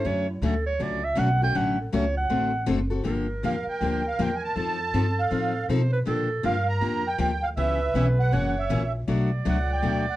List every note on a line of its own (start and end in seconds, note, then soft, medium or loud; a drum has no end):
0.04 0.41 F#2 medium
0.04 0.26 D3 medium
0.04 0.26 F#3 medium
0.04 0.25 A3 medium
0.04 0.26 C#4 medium
0.04 0.26 F#4 medium
0.04 0.29 C#5 medium
0.29 0.45 E4 soft
0.41 0.78 D2 loud
0.41 0.53 D3 medium
0.41 0.53 F#3 medium
0.41 0.54 A3 medium
0.41 0.54 C#4 medium
0.41 0.54 F#4 loud
0.41 0.66 A4 medium
0.67 0.84 C#5 medium
0.79 1.16 C#2 medium
0.79 1.01 D3 medium
0.79 1.01 F#3 medium
0.79 1.01 A3 medium
0.79 1.01 C#4 medium
0.79 1.01 F#4 medium
0.79 1.06 D5 medium
1.04 1.20 E5 loud
1.15 1.54 B1 loud
1.15 1.27 D3 loud
1.15 1.28 F#3 loud
1.15 1.28 A3 medium
1.15 1.28 C#4 medium
1.15 1.28 F#4 loud
1.15 1.42 F#5 loud
1.42 1.54 A3 soft
1.42 1.54 C#4 medium
1.42 1.54 F#4 medium
1.42 1.58 G5 loud
1.54 1.91 A1 medium
1.54 1.76 D3 medium
1.54 1.76 F#3 medium
1.54 1.76 A3 medium
1.54 1.76 C#4 medium
1.54 1.76 F#4 medium
1.54 1.79 F#5 loud
1.81 1.96 A4 soft
1.92 2.29 C#2 loud
1.92 2.04 D3 medium
1.92 2.04 F#3 medium
1.92 2.04 A3 loud
1.92 2.04 C#4 medium
1.92 2.04 F#4 medium
1.92 2.17 C#5 medium
2.17 2.65 F#5 loud
2.30 2.67 A1 medium
2.30 2.51 D3 medium
2.30 2.51 A3 medium
2.30 2.51 C4 medium
2.30 2.51 F#4 medium
2.30 2.51 A4 medium
2.66 3.04 F#1 medium
2.66 2.78 D3 medium
2.66 2.78 A3 loud
2.66 2.78 C4 loud
2.66 2.78 F#4 loud
2.66 2.79 A4 loud
2.90 3.04 C4 soft
2.90 3.04 F#4 medium
2.90 3.04 A4 medium
3.04 3.42 G1 medium
3.04 3.26 D3 medium
3.04 3.26 F3 medium
3.04 3.26 A#3 medium
3.04 3.26 D4 medium
3.04 3.26 G4 medium
3.04 4.57 A#4 medium
3.43 3.65 E2 medium
3.43 3.54 D3 medium
3.43 3.55 F3 medium
3.43 3.55 A#3 medium
3.43 3.55 D4 medium
3.43 3.55 G4 medium
3.43 3.66 F5 medium
3.66 4.07 G5 medium
3.66 muted upright bass stroke soft
3.81 4.17 D2 medium
3.81 4.02 D3 medium
3.81 4.02 F3 medium
3.81 4.02 A#3 medium
3.81 4.03 D4 medium
3.81 4.03 G4 medium
4.08 4.20 F5 medium
4.19 4.55 E2 medium
4.19 4.30 D3 medium
4.19 4.30 F3 medium
4.19 4.30 A#3 loud
4.19 4.30 D4 medium
4.19 4.30 G4 medium
4.19 4.35 G5 loud
4.36 4.43 G#5 medium
4.44 5.21 A5 loud
4.56 4.92 F2 medium
4.56 4.77 F3 medium
4.56 4.78 C4 medium
4.56 4.78 D#4 medium
4.56 5.71 A4 loud
4.56 4.78 A4 medium
4.94 5.30 G2 medium
4.94 5.05 F3 medium
4.94 5.05 C4 medium
4.94 5.05 D#4 medium
4.94 5.05 A4 loud
5.19 5.66 F5 medium
5.31 5.68 A2 medium
5.31 5.52 F3 medium
5.31 5.52 C4 medium
5.31 5.53 D#4 medium
5.31 5.53 A4 medium
5.69 6.05 B2 medium
5.69 5.80 F3 medium
5.69 5.81 C4 medium
5.69 5.81 D#4 loud
5.69 5.81 A4 loud
5.69 5.92 C5 medium
5.93 5.99 B4 medium
6.06 6.43 A#2 medium
6.06 6.27 D3 medium
6.06 6.27 F3 medium
6.06 6.28 A#3 medium
6.06 6.28 D4 medium
6.06 6.28 G4 medium
6.06 6.47 A4 loud
6.43 6.80 G2 loud
6.43 6.55 D3 medium
6.43 6.55 F3 medium
6.43 6.55 A#3 medium
6.43 6.55 D4 medium
6.43 6.56 G4 medium
6.43 7.34 A#4 loud
6.43 6.67 F5 loud
6.69 7.08 A#5 loud
6.81 7.18 F2 medium
6.81 7.02 D3 medium
6.81 7.03 F3 medium
6.81 7.03 A#3 medium
6.81 7.03 D4 medium
6.81 7.03 G4 medium
7.07 7.44 G5 loud
7.18 7.56 D2 loud
7.18 7.30 D3 medium
7.18 7.30 F3 medium
7.18 7.31 A#3 loud
7.18 7.31 D4 medium
7.18 7.31 G4 loud
7.43 7.49 F5 loud
7.57 7.93 C#2 medium
7.57 7.78 C#3 medium
7.57 7.78 E3 medium
7.57 7.79 B3 medium
7.57 7.79 C#4 medium
7.57 7.78 G4 medium
7.57 8.34 B4 loud
7.57 7.94 E5 medium
7.94 8.31 B1 loud
7.94 8.06 C#3 medium
7.94 8.06 E3 medium
7.94 8.06 B3 medium
7.94 8.07 C#4 medium
7.94 8.07 G4 loud
7.94 8.06 E5 medium
8.20 8.58 F#5 medium
8.32 8.69 F#1 medium
8.32 8.53 C#3 medium
8.32 8.53 E3 medium
8.32 8.54 A#3 medium
8.32 8.54 C#4 medium
8.32 8.54 F#4 medium
8.32 8.94 C#5 loud
8.59 8.93 E5 medium
8.69 9.07 A#1 medium
8.69 8.81 C#3 medium
8.69 8.81 E3 loud
8.69 8.81 A#3 loud
8.69 8.82 C#4 loud
8.69 8.81 F#4 medium
9.08 9.44 B1 medium
9.08 9.29 B2 medium
9.08 9.29 F#3 medium
9.08 9.29 A3 medium
9.08 9.29 D4 medium
9.08 9.29 F#4 medium
9.08 10.16 D5 loud
9.45 9.82 C#2 loud
9.45 9.57 B2 medium
9.45 9.57 F#3 medium
9.45 9.57 A3 loud
9.45 9.57 D4 medium
9.45 9.57 F#4 medium
9.45 9.72 F#5 medium
9.72 10.06 G5 medium
9.82 10.16 D2 medium
9.82 10.04 B2 medium
9.82 10.04 F#3 medium
9.82 10.04 A3 medium
9.82 10.04 D4 medium
9.82 10.04 F#4 medium
10.10 10.16 F#5 medium